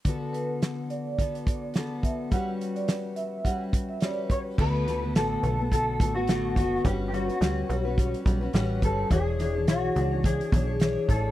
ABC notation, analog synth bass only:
X:1
M:4/4
L:1/8
Q:"Swing 16ths" 1/4=106
K:D
V:1 name="Analog synth bass" clef=bass
z8 | z8 | D,,2 A,,, B,,,2 A,,,2 F,,, | G,,,2 D,, B,,,2 B,,, A,,, G,,, |
E,,,2 B,,, C,,2 B,,,2 A,,, |]